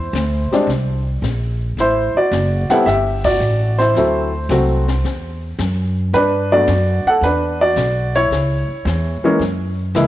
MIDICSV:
0, 0, Header, 1, 5, 480
1, 0, Start_track
1, 0, Key_signature, 1, "major"
1, 0, Tempo, 545455
1, 1565, Time_signature, 4, 2, 24, 8
1, 8862, End_track
2, 0, Start_track
2, 0, Title_t, "Grand piano"
2, 0, Program_c, 0, 0
2, 0, Note_on_c, 0, 64, 63
2, 0, Note_on_c, 0, 72, 89
2, 455, Note_on_c, 0, 55, 62
2, 462, Note_on_c, 0, 56, 59
2, 467, Note_on_c, 0, 60, 60
2, 473, Note_on_c, 0, 62, 72
2, 589, Note_off_c, 0, 55, 0
2, 593, Note_off_c, 0, 56, 0
2, 595, Note_off_c, 0, 60, 0
2, 598, Note_off_c, 0, 62, 0
2, 911, Note_off_c, 0, 72, 0
2, 912, Note_off_c, 0, 64, 0
2, 1583, Note_on_c, 0, 64, 66
2, 1588, Note_on_c, 0, 72, 88
2, 1883, Note_off_c, 0, 64, 0
2, 1886, Note_off_c, 0, 72, 0
2, 1910, Note_on_c, 0, 74, 83
2, 1916, Note_on_c, 0, 66, 65
2, 2350, Note_off_c, 0, 74, 0
2, 2353, Note_off_c, 0, 66, 0
2, 2376, Note_on_c, 0, 78, 86
2, 2378, Note_on_c, 0, 55, 76
2, 2384, Note_on_c, 0, 59, 63
2, 2384, Note_on_c, 0, 69, 70
2, 2391, Note_on_c, 0, 60, 63
2, 2392, Note_on_c, 0, 64, 75
2, 2511, Note_off_c, 0, 55, 0
2, 2514, Note_off_c, 0, 59, 0
2, 2514, Note_off_c, 0, 78, 0
2, 2517, Note_off_c, 0, 60, 0
2, 2518, Note_off_c, 0, 64, 0
2, 2518, Note_on_c, 0, 76, 86
2, 2519, Note_off_c, 0, 69, 0
2, 2529, Note_on_c, 0, 67, 68
2, 2835, Note_off_c, 0, 67, 0
2, 2858, Note_on_c, 0, 74, 87
2, 2863, Note_off_c, 0, 76, 0
2, 2876, Note_on_c, 0, 66, 69
2, 3313, Note_off_c, 0, 66, 0
2, 3331, Note_on_c, 0, 72, 90
2, 3348, Note_on_c, 0, 64, 58
2, 3351, Note_off_c, 0, 74, 0
2, 3488, Note_off_c, 0, 64, 0
2, 3491, Note_on_c, 0, 54, 57
2, 3496, Note_on_c, 0, 57, 59
2, 3500, Note_on_c, 0, 60, 54
2, 3502, Note_on_c, 0, 64, 64
2, 3786, Note_off_c, 0, 54, 0
2, 3788, Note_off_c, 0, 57, 0
2, 3791, Note_off_c, 0, 60, 0
2, 3791, Note_off_c, 0, 64, 0
2, 3960, Note_on_c, 0, 54, 61
2, 3964, Note_on_c, 0, 57, 56
2, 3969, Note_on_c, 0, 60, 58
2, 3973, Note_on_c, 0, 66, 71
2, 4260, Note_off_c, 0, 54, 0
2, 4262, Note_off_c, 0, 57, 0
2, 4265, Note_off_c, 0, 60, 0
2, 4267, Note_off_c, 0, 66, 0
2, 4737, Note_off_c, 0, 72, 0
2, 5403, Note_on_c, 0, 71, 99
2, 5423, Note_on_c, 0, 62, 74
2, 5722, Note_off_c, 0, 62, 0
2, 5737, Note_on_c, 0, 54, 68
2, 5739, Note_on_c, 0, 74, 99
2, 5744, Note_off_c, 0, 71, 0
2, 5744, Note_on_c, 0, 57, 60
2, 5745, Note_on_c, 0, 59, 59
2, 5751, Note_on_c, 0, 62, 73
2, 5755, Note_on_c, 0, 66, 72
2, 5870, Note_off_c, 0, 54, 0
2, 5873, Note_off_c, 0, 57, 0
2, 5874, Note_off_c, 0, 59, 0
2, 5877, Note_off_c, 0, 62, 0
2, 6191, Note_off_c, 0, 66, 0
2, 6223, Note_on_c, 0, 78, 101
2, 6231, Note_off_c, 0, 74, 0
2, 6241, Note_on_c, 0, 69, 78
2, 6367, Note_off_c, 0, 69, 0
2, 6368, Note_on_c, 0, 71, 80
2, 6371, Note_off_c, 0, 78, 0
2, 6381, Note_on_c, 0, 62, 66
2, 6673, Note_off_c, 0, 71, 0
2, 6680, Note_off_c, 0, 62, 0
2, 6699, Note_on_c, 0, 74, 99
2, 6707, Note_on_c, 0, 66, 74
2, 7147, Note_off_c, 0, 66, 0
2, 7177, Note_on_c, 0, 73, 97
2, 7189, Note_on_c, 0, 64, 63
2, 7190, Note_off_c, 0, 74, 0
2, 8131, Note_on_c, 0, 52, 79
2, 8137, Note_on_c, 0, 56, 72
2, 8143, Note_on_c, 0, 58, 69
2, 8143, Note_on_c, 0, 61, 78
2, 8265, Note_off_c, 0, 52, 0
2, 8268, Note_off_c, 0, 56, 0
2, 8271, Note_off_c, 0, 58, 0
2, 8271, Note_off_c, 0, 61, 0
2, 8579, Note_off_c, 0, 73, 0
2, 8584, Note_off_c, 0, 64, 0
2, 8755, Note_on_c, 0, 52, 74
2, 8760, Note_on_c, 0, 56, 68
2, 8762, Note_on_c, 0, 58, 60
2, 8766, Note_on_c, 0, 64, 74
2, 8862, Note_off_c, 0, 52, 0
2, 8862, Note_off_c, 0, 56, 0
2, 8862, Note_off_c, 0, 58, 0
2, 8862, Note_off_c, 0, 64, 0
2, 8862, End_track
3, 0, Start_track
3, 0, Title_t, "Upright bass"
3, 0, Program_c, 1, 32
3, 0, Note_on_c, 1, 40, 75
3, 107, Note_off_c, 1, 40, 0
3, 116, Note_on_c, 1, 38, 94
3, 428, Note_off_c, 1, 38, 0
3, 587, Note_on_c, 1, 36, 81
3, 1061, Note_off_c, 1, 36, 0
3, 1074, Note_on_c, 1, 34, 86
3, 1545, Note_off_c, 1, 34, 0
3, 1558, Note_on_c, 1, 33, 69
3, 1869, Note_off_c, 1, 33, 0
3, 2037, Note_on_c, 1, 30, 96
3, 2349, Note_off_c, 1, 30, 0
3, 2518, Note_on_c, 1, 31, 79
3, 2987, Note_off_c, 1, 31, 0
3, 2994, Note_on_c, 1, 33, 92
3, 3465, Note_off_c, 1, 33, 0
3, 3473, Note_on_c, 1, 38, 73
3, 3944, Note_off_c, 1, 38, 0
3, 3953, Note_on_c, 1, 36, 99
3, 4424, Note_off_c, 1, 36, 0
3, 4435, Note_on_c, 1, 40, 81
3, 4905, Note_off_c, 1, 40, 0
3, 4915, Note_on_c, 1, 42, 92
3, 5385, Note_off_c, 1, 42, 0
3, 5396, Note_on_c, 1, 43, 70
3, 5865, Note_off_c, 1, 43, 0
3, 5876, Note_on_c, 1, 42, 98
3, 6187, Note_off_c, 1, 42, 0
3, 6347, Note_on_c, 1, 40, 75
3, 6819, Note_off_c, 1, 40, 0
3, 6829, Note_on_c, 1, 35, 94
3, 7301, Note_off_c, 1, 35, 0
3, 7309, Note_on_c, 1, 37, 69
3, 7622, Note_off_c, 1, 37, 0
3, 7789, Note_on_c, 1, 40, 103
3, 8103, Note_off_c, 1, 40, 0
3, 8265, Note_on_c, 1, 42, 76
3, 8738, Note_off_c, 1, 42, 0
3, 8753, Note_on_c, 1, 37, 94
3, 8862, Note_off_c, 1, 37, 0
3, 8862, End_track
4, 0, Start_track
4, 0, Title_t, "Muted upright bass strokes"
4, 446, Note_on_c, 9, 29, 36
4, 534, Note_off_c, 9, 29, 0
4, 1888, Note_on_c, 9, 29, 35
4, 1976, Note_off_c, 9, 29, 0
4, 6205, Note_on_c, 9, 29, 36
4, 6293, Note_off_c, 9, 29, 0
4, 7641, Note_on_c, 9, 29, 39
4, 7729, Note_off_c, 9, 29, 0
4, 8117, Note_on_c, 9, 29, 36
4, 8205, Note_off_c, 9, 29, 0
4, 8862, End_track
5, 0, Start_track
5, 0, Title_t, "Drums"
5, 128, Note_on_c, 9, 44, 64
5, 131, Note_on_c, 9, 38, 64
5, 216, Note_off_c, 9, 44, 0
5, 219, Note_off_c, 9, 38, 0
5, 461, Note_on_c, 9, 38, 36
5, 549, Note_off_c, 9, 38, 0
5, 609, Note_on_c, 9, 25, 51
5, 609, Note_on_c, 9, 38, 43
5, 697, Note_off_c, 9, 38, 0
5, 1085, Note_on_c, 9, 44, 65
5, 1088, Note_on_c, 9, 38, 64
5, 1173, Note_off_c, 9, 44, 0
5, 1176, Note_off_c, 9, 38, 0
5, 1568, Note_off_c, 9, 25, 0
5, 1568, Note_on_c, 9, 25, 47
5, 1568, Note_on_c, 9, 38, 45
5, 1656, Note_off_c, 9, 38, 0
5, 2045, Note_on_c, 9, 44, 53
5, 2047, Note_on_c, 9, 38, 68
5, 2133, Note_off_c, 9, 44, 0
5, 2135, Note_off_c, 9, 38, 0
5, 2375, Note_on_c, 9, 38, 51
5, 2463, Note_off_c, 9, 38, 0
5, 2525, Note_off_c, 9, 25, 0
5, 2525, Note_on_c, 9, 25, 56
5, 2525, Note_on_c, 9, 38, 42
5, 2613, Note_off_c, 9, 38, 0
5, 2851, Note_on_c, 9, 51, 77
5, 2855, Note_on_c, 9, 36, 93
5, 2939, Note_off_c, 9, 51, 0
5, 2943, Note_off_c, 9, 36, 0
5, 3002, Note_on_c, 9, 44, 51
5, 3090, Note_off_c, 9, 44, 0
5, 3338, Note_on_c, 9, 38, 38
5, 3426, Note_off_c, 9, 38, 0
5, 3484, Note_off_c, 9, 25, 0
5, 3484, Note_on_c, 9, 25, 50
5, 3484, Note_on_c, 9, 38, 45
5, 3572, Note_off_c, 9, 38, 0
5, 3962, Note_on_c, 9, 44, 56
5, 3965, Note_on_c, 9, 38, 64
5, 4050, Note_off_c, 9, 44, 0
5, 4053, Note_off_c, 9, 38, 0
5, 4295, Note_on_c, 9, 38, 57
5, 4383, Note_off_c, 9, 38, 0
5, 4443, Note_off_c, 9, 25, 0
5, 4443, Note_on_c, 9, 25, 51
5, 4443, Note_on_c, 9, 38, 45
5, 4531, Note_off_c, 9, 38, 0
5, 4916, Note_on_c, 9, 44, 59
5, 4919, Note_on_c, 9, 38, 61
5, 5004, Note_off_c, 9, 44, 0
5, 5007, Note_off_c, 9, 38, 0
5, 5398, Note_off_c, 9, 25, 0
5, 5398, Note_on_c, 9, 25, 44
5, 5398, Note_on_c, 9, 38, 46
5, 5486, Note_off_c, 9, 38, 0
5, 5870, Note_on_c, 9, 44, 67
5, 5873, Note_on_c, 9, 38, 61
5, 5958, Note_off_c, 9, 44, 0
5, 5961, Note_off_c, 9, 38, 0
5, 6362, Note_off_c, 9, 25, 0
5, 6362, Note_on_c, 9, 25, 46
5, 6362, Note_on_c, 9, 38, 48
5, 6450, Note_off_c, 9, 38, 0
5, 6835, Note_on_c, 9, 44, 61
5, 6838, Note_on_c, 9, 38, 69
5, 6923, Note_off_c, 9, 44, 0
5, 6926, Note_off_c, 9, 38, 0
5, 7171, Note_on_c, 9, 38, 38
5, 7259, Note_off_c, 9, 38, 0
5, 7321, Note_off_c, 9, 25, 0
5, 7321, Note_on_c, 9, 25, 53
5, 7321, Note_on_c, 9, 38, 47
5, 7409, Note_off_c, 9, 38, 0
5, 7801, Note_on_c, 9, 44, 62
5, 7804, Note_on_c, 9, 38, 66
5, 7889, Note_off_c, 9, 44, 0
5, 7892, Note_off_c, 9, 38, 0
5, 8281, Note_off_c, 9, 25, 0
5, 8281, Note_on_c, 9, 25, 53
5, 8281, Note_on_c, 9, 38, 46
5, 8369, Note_off_c, 9, 38, 0
5, 8759, Note_on_c, 9, 44, 60
5, 8761, Note_on_c, 9, 38, 65
5, 8847, Note_off_c, 9, 44, 0
5, 8849, Note_off_c, 9, 38, 0
5, 8862, Note_off_c, 9, 25, 0
5, 8862, End_track
0, 0, End_of_file